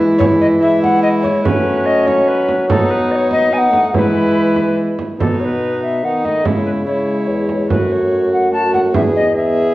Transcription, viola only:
0.00 0.58 E4 medium
0.62 1.48 E4 medium
1.46 2.69 C#4 medium
2.70 3.51 D#4 medium
3.52 3.96 D#4 medium
3.94 5.00 E4 medium
5.20 6.00 D#4 medium
6.05 6.48 D#4 medium
6.46 6.87 E4 medium
6.88 7.69 E4 medium
7.71 8.52 F#4 medium
8.54 8.96 F#4 medium
8.94 9.34 G#4 medium
9.35 9.74 G#4 medium

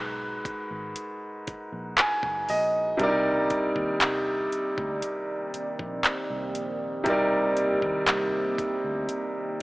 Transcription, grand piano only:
0.00 2.43 G#2 medium
0.00 2.44 G#3 medium
0.00 2.45 F#4 medium
0.00 2.45 A#4 medium
0.00 2.46 B4 medium
1.99 2.45 G#5 medium
2.50 2.96 D#5 medium
2.97 7.01 C3 medium
2.97 7.02 G3 medium
2.97 3.06 D4 medium
3.02 7.03 A#4 medium
3.02 7.04 D5 medium
3.07 7.05 D#4 medium
7.04 9.62 C3 medium
7.04 9.62 G3 medium
7.04 9.62 D#4 medium
7.08 9.62 A#4 medium
7.08 9.62 D5 medium

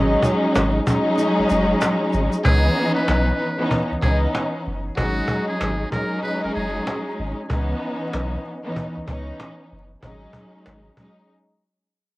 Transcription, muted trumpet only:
2.44 2.93 G#4 loud
2.95 3.66 B4 medium
4.02 4.20 G#4 medium
4.97 5.45 F#4 loud
5.48 5.89 G#4 medium
5.92 6.20 A#4 medium
6.23 6.41 B4 medium
6.43 6.54 A#4 medium
6.55 7.03 G#4 medium

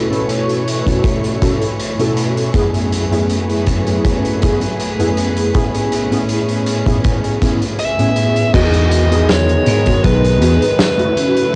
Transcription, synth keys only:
0.10 0.81 B2 medium
0.10 0.81 C#4 medium
0.10 0.81 E4 medium
0.10 0.82 F#4 medium
0.10 0.82 A4 medium
0.86 1.37 B2 medium
0.86 1.37 C#4 medium
0.86 1.37 E4 medium
0.86 1.38 F#4 medium
0.86 1.38 A4 medium
1.41 1.64 B2 medium
1.41 1.64 C#4 medium
1.41 1.64 E4 medium
1.41 1.64 F#4 medium
1.41 1.64 A4 medium
1.98 2.50 B2 medium
1.98 2.50 C#4 medium
1.98 2.50 E4 medium
1.98 2.50 F#4 medium
1.98 2.50 A4 medium
2.54 3.07 F#2 medium
2.54 3.07 A3 medium
2.54 3.07 B3 medium
2.54 3.07 C#4 medium
2.54 3.07 E4 medium
2.54 3.07 G#4 medium
3.11 3.81 F#2 medium
3.11 3.81 A3 medium
3.11 3.82 B3 medium
3.11 3.82 C#4 medium
3.11 3.82 E4 medium
3.11 3.82 G#4 medium
3.86 4.37 F#2 medium
3.86 4.37 A3 medium
3.86 4.37 B3 medium
3.86 4.38 C#4 medium
3.86 4.38 E4 medium
3.86 4.38 G#4 medium
4.41 4.63 F#2 medium
4.41 4.64 A3 medium
4.41 4.64 B3 medium
4.41 4.64 C#4 medium
4.41 4.64 E4 medium
4.41 4.64 G#4 medium
4.99 5.50 F#2 medium
4.99 5.50 A3 medium
4.99 5.50 B3 medium
4.99 5.50 C#4 medium
4.99 5.50 E4 medium
4.99 5.50 G#4 loud
5.53 6.06 A2 medium
5.53 6.07 B3 medium
5.53 6.07 C#4 medium
5.53 6.07 E4 medium
5.53 6.07 G#4 medium
6.11 6.81 A2 medium
6.11 6.82 B3 medium
6.11 6.82 C#4 medium
6.11 6.82 E4 medium
6.11 6.82 G#4 medium
6.86 7.37 A2 medium
6.86 7.37 B3 medium
6.86 7.37 C#4 medium
6.86 7.38 E4 medium
6.86 7.38 G#4 medium
7.41 7.64 A2 medium
7.41 7.64 B3 medium
7.41 7.64 C#4 medium
7.41 7.64 E4 medium
7.41 7.64 G#4 medium
7.98 8.50 A2 medium
7.98 8.50 B3 medium
7.98 8.50 C#4 medium
7.98 8.50 E4 medium
7.98 8.50 G#4 loud
8.53 9.06 B3 medium
8.53 9.06 D#4 medium
8.53 9.07 F#4 medium
8.53 9.07 G#4 loud
9.10 9.81 B3 medium
9.10 9.81 D#4 medium
9.10 9.82 F#4 medium
9.10 9.82 G#4 medium
9.85 10.37 B3 medium
9.85 10.37 D#4 medium
9.85 10.37 F#4 medium
9.85 10.38 G#4 medium
10.41 10.64 B3 medium
10.41 10.64 D#4 medium
10.41 10.64 F#4 medium
10.41 10.64 G#4 medium
10.97 11.49 A3 medium
10.97 11.49 C#4 medium
10.97 11.50 E4 medium
10.97 11.50 F#4 loud

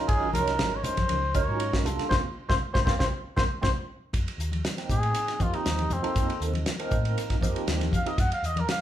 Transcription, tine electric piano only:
0.00 0.28 F#3 medium
0.00 0.28 C#4 medium
0.00 0.28 D#4 medium
0.00 0.28 F4 medium
0.00 0.28 A#4 medium
0.34 1.23 F#3 medium
0.34 1.23 C#4 medium
0.34 1.23 D#4 medium
0.34 1.23 F4 medium
0.34 1.24 A#4 medium
1.34 1.85 F#3 medium
1.34 1.85 C#4 medium
1.34 1.85 D#4 medium
1.34 1.84 F4 medium
1.34 1.86 A#4 medium
1.84 2.10 G3 medium
1.84 2.10 A#3 medium
1.84 2.11 D4 medium
1.84 2.10 F4 medium
1.84 2.11 A4 medium
2.11 2.19 A#3 medium
2.11 2.19 C4 medium
2.11 2.20 F4 medium
2.49 2.57 A#3 medium
2.49 2.57 C4 medium
2.49 2.57 F4 medium
2.74 2.82 A#3 medium
2.74 2.82 C4 medium
2.74 2.82 F4 medium
2.85 2.94 A#3 loud
2.85 2.94 C4 loud
2.85 2.94 F4 loud
2.99 3.07 A#3 medium
2.99 3.07 C4 medium
2.99 3.07 F4 medium
3.36 3.45 A#3 medium
3.36 3.45 C4 medium
3.36 3.45 F4 medium
3.62 3.70 A#3 medium
3.62 3.70 C4 medium
3.62 3.71 F4 medium
4.77 5.32 F3 medium
4.77 5.32 A#3 medium
4.77 5.32 C4 medium
4.77 5.33 D#4 medium
4.77 5.33 G5 medium
5.40 5.95 F3 medium
5.40 5.96 A#3 medium
5.40 5.96 C4 medium
5.40 5.96 D#4 medium
5.40 5.96 G4 medium
6.02 6.69 F3 medium
6.02 6.69 A#3 medium
6.02 6.69 C4 medium
6.02 6.70 D#4 medium
6.02 6.70 A4 medium
6.79 7.35 F3 medium
6.79 7.35 A#3 medium
6.79 7.35 C4 medium
6.79 7.35 D#4 medium
6.79 7.35 A#4 loud
7.42 7.98 F3 medium
7.42 7.98 A#3 medium
7.42 7.98 C4 medium
7.42 7.98 D#4 medium
7.42 7.98 G4 medium
8.05 8.18 F3 medium
8.05 8.18 A#3 medium
8.05 8.18 C4 medium
8.05 8.18 D#4 medium
8.05 8.18 G4 medium

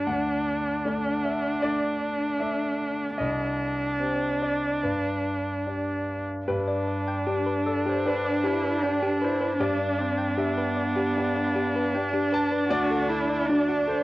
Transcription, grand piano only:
0.07 0.82 D2 medium
0.07 1.20 F#5 medium
0.85 1.59 A3 soft
0.85 1.59 D4 soft
0.85 1.59 D5 soft
1.24 1.60 E5 medium
1.62 2.36 A3 soft
1.62 2.36 D4 soft
1.62 2.35 D5 medium
2.40 3.15 A3 soft
2.40 3.15 D4 soft
2.40 3.15 D5 soft
2.40 3.14 E5 medium
3.18 3.98 C2 soft
3.18 4.36 D#5 medium
3.99 4.78 C4 soft
3.99 4.79 G4 soft
3.99 4.79 C5 soft
4.42 4.80 D5 medium
4.83 5.64 G2 soft
4.83 5.62 B4 medium
5.66 6.44 D4 soft
5.66 6.44 G4 soft
5.66 6.44 D5 soft
6.48 7.25 G2 soft
6.48 7.63 B4 medium
7.28 8.02 D4 soft
7.28 8.02 G4 soft
7.28 8.02 D5 soft
7.66 7.85 A4 medium
7.88 8.06 C5 medium
8.05 8.80 D4 soft
8.05 8.80 G4 soft
8.05 9.18 B4 medium
8.05 8.80 D5 soft
8.83 9.56 D4 soft
8.83 9.56 G4 soft
8.83 9.56 D5 soft
9.24 9.59 C5 medium
9.60 10.36 G2 medium
9.60 10.34 D5 medium
10.37 11.13 D4 soft
10.37 11.13 G4 soft
10.37 11.13 D5 soft
10.37 11.13 E5 medium
11.16 11.90 D4 soft
11.16 11.90 G4 soft
11.16 11.91 D5 soft
11.94 12.67 D4 soft
11.94 12.67 G4 soft
11.94 12.67 D5 medium
12.34 12.69 A5 medium
12.70 13.46 D2 medium
12.70 13.48 D5 loud
13.49 14.03 D4 soft
13.49 14.03 F#4 soft
13.49 14.03 D5 medium
13.89 14.03 C5 medium

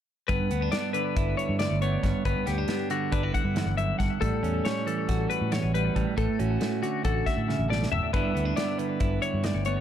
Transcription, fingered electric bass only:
0.30 0.38 G1 medium
0.40 0.48 G2 medium
0.51 0.67 D2 medium
1.17 1.33 G1 medium
1.49 1.66 G2 medium
1.71 1.96 G1 medium
2.04 2.12 G1 medium
2.26 2.34 G1 medium
2.35 2.44 G2 medium
2.47 2.64 D2 medium
3.13 3.29 G1 medium
3.44 3.61 G2 medium
3.66 3.91 G1 loud
4.00 4.08 G1 medium
4.21 4.30 A1 medium
4.32 4.40 A2 medium
4.43 4.60 E2 medium
5.09 5.25 A1 medium
5.41 5.58 A2 medium
5.63 5.88 A1 medium
5.96 6.04 A1 medium
6.18 6.26 A1 medium
6.29 6.37 A2 medium
6.40 6.56 A1 medium
7.05 7.21 A1 medium
7.37 7.54 A2 medium
7.59 7.84 A1 medium
7.91 8.00 F#1 medium
8.14 8.22 G1 medium
8.24 8.32 G2 medium
8.35 8.52 D2 medium
9.01 9.17 G1 medium
9.34 9.50 G2 medium
9.54 9.80 G1 loud

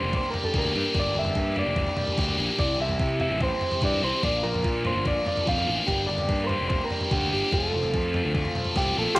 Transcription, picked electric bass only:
0.03 0.21 F1 medium
0.54 0.72 D2 medium
0.75 0.84 G2 medium
0.95 1.13 G1 medium
1.16 1.33 G1 medium
1.36 1.62 G2 medium
1.66 1.84 F1 medium
2.18 2.36 D2 medium
2.39 2.48 A#1 medium
2.59 2.77 C2 medium
2.79 2.97 C2 medium
3.00 3.27 C3 medium
3.31 3.49 A1 medium
3.82 4.00 G2 medium
4.02 4.12 C2 medium
4.23 4.41 A#1 medium
4.44 4.62 A#1 medium
4.64 4.91 A#2 medium
4.95 5.13 G1 medium
5.47 5.65 F2 medium
5.68 5.77 A1 medium
5.88 6.06 G1 medium
6.09 6.27 G1 medium
6.29 6.55 G2 medium
6.61 6.78 F1 medium
7.12 7.29 D2 medium
7.33 7.41 G1 medium
7.52 7.70 F1 medium
7.74 7.91 F1 medium
7.94 8.20 F2 medium
8.25 8.42 D2 medium
8.76 8.93 C2 medium
8.97 9.06 A#1 medium

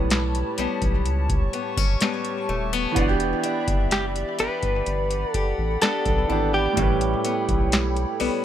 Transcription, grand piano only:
0.00 2.90 A2 medium
0.00 2.92 G3 medium
0.00 2.93 C#4 medium
0.00 2.95 B4 medium
2.92 6.23 E3 medium
2.92 6.25 B3 medium
2.98 6.26 D4 medium
2.98 3.05 F#4 medium
3.08 6.31 G4 medium
6.27 6.76 E3 soft
6.27 6.77 B3 soft
6.27 6.78 D4 soft
6.32 6.78 G4 medium
6.73 8.45 A2 medium
6.73 8.45 G3 medium
6.79 8.45 C#4 medium
6.79 8.45 B4 medium

